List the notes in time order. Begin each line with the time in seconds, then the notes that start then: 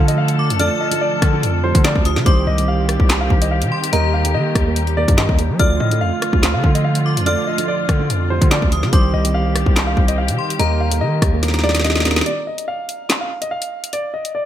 Already playing: D3 F3 A3 D4 F4 A4 C5 F6
0.00 A4
0.08 D#5, closed hi-hat
0.18 F5
0.28 closed hi-hat
0.39 D6
0.50 F2, closed hi-hat
0.59 D3 F3 A3 F4 A4 D5 F6, closed hi-hat
0.80 D#5
0.91 D3 F3 A3 F4 A4, closed hi-hat
1.01 D5
1.22 D3, kick, cross-stick, closed hi-hat
1.32 D3 F3 A3 F4 A4
1.43 F2, closed hi-hat
1.63 D3 F3 A3 F4 G4 C5
1.75 D3, kick, closed hi-hat
1.84 D5, snare, clap, closed hi-hat
1.96 D2, kick
2.04 D3 F3 A3 F4 G4 D#6, closed hi-hat
2.16 D3, snare
2.25 C2 D#3 G3 C4 G4 C5 D6, kick, closed hi-hat
2.47 C2 D#5
2.57 D#3 G3 C4 G4 C5, closed hi-hat
2.68 F5
2.89 cross-stick, closed hi-hat
2.99 C2 D#3 G3 C4 G4 C5, kick
3.10 snare, clap, closed hi-hat
3.21 F5
3.29 C2 D#3 G3 C4 G4 C5, kick
3.42 D#5, closed hi-hat
3.51 F5
3.62 C3, closed hi-hat
3.72 C6
3.84 closed hi-hat
3.92 D#2 D#3 G3 A#3 G4 A#4 D#5 A#5, closed hi-hat
4.14 F5
4.24 D#3 G3 A#3 G4 A4, closed hi-hat
4.34 D#3 D#5
4.55 D#2, kick, cross-stick, closed hi-hat
4.66 D#3 G3 A#3 G4 A#4
4.76 closed hi-hat
4.87 closed hi-hat
4.97 D#3 G3 A#3 G4 A#4 D5
5.08 G2, kick, closed hi-hat
5.18 D#5, snare, clap, closed hi-hat
5.29 D#2, kick
5.38 D#3 G3 A#3 G4 A#4, closed hi-hat
5.50 G3
5.59 D2 D3 F3 A3 F4 A4 D5 F6, kick, closed hi-hat
5.80 A2 D#5
5.90 D3 F3 A3 F4 A4, closed hi-hat
6.01 F2 F5
6.22 cross-stick, closed hi-hat
6.32 D2 D3 F3 A3 F4 C5, kick
6.43 snare, clap, closed hi-hat
6.54 D3 F5
6.63 D3 F3 A3 F4 A4, kick
6.75 D#5, closed hi-hat
6.84 F5
6.95 closed hi-hat
7.06 D6
7.16 F2, closed hi-hat
7.25 D3 F3 A3 F4 A4 D5 F6, closed hi-hat
7.47 D#5
7.57 D3 F3 A3 F4 A4, closed hi-hat
7.68 D5
7.89 D3, kick, cross-stick, closed hi-hat
7.99 D3 F3 A3 F4 A4
8.09 F2, closed hi-hat
8.30 D3 F3 A3 F4 G4 C5
8.41 D3, kick, closed hi-hat
8.51 D5, snare, clap, closed hi-hat
8.62 D2, kick
8.71 D3 F3 A3 F4 G4 D#6, closed hi-hat
8.83 D3, snare
8.92 C2 D#3 G3 C4 G4 C5 D6, kick, closed hi-hat
9.14 C2 D#5
9.24 D#3 G3 C4 G4 C5, closed hi-hat
9.34 F5
9.55 cross-stick, closed hi-hat
9.65 C2 D#3 G3 C4 G4 C5, kick
9.76 snare, clap, closed hi-hat
9.87 F5
9.96 C2 D#3 G3 C4 G4 C5, kick
10.08 D#5, closed hi-hat
10.18 F5
10.28 C3, closed hi-hat
10.38 C6
10.50 closed hi-hat
10.59 D#2 D#3 G3 A#3 G4 A#4 D#5 A#5, closed hi-hat
10.80 F5
10.90 D#3 G3 A#3 G4 A4, closed hi-hat
11.01 D#3 D#5
11.22 D#2, kick, cross-stick, closed hi-hat
11.32 D#3 G3 A#3 G4 A#4
11.43 snare, closed hi-hat
11.48 snare
11.54 snare, closed hi-hat
11.59 snare
11.63 D#3 G3 A#3 G4 A#4 D5, snare
11.69 snare
11.75 snare, closed hi-hat
11.80 snare
11.84 D#5, snare, closed hi-hat
11.90 snare
11.95 snare
12.00 snare
12.04 D#3 G3 A#3 G4 A#4, snare, closed hi-hat
12.11 snare
12.16 snare
12.21 snare
12.26 D5, closed hi-hat
12.47 D#5
12.58 closed hi-hat
12.68 F5
12.89 closed hi-hat
13.10 snare, clap, closed hi-hat
13.21 F5
13.42 D#5, closed hi-hat
13.51 F5
13.62 closed hi-hat
13.84 closed hi-hat
13.93 D5, closed hi-hat
14.14 D#5
14.25 closed hi-hat
14.35 D5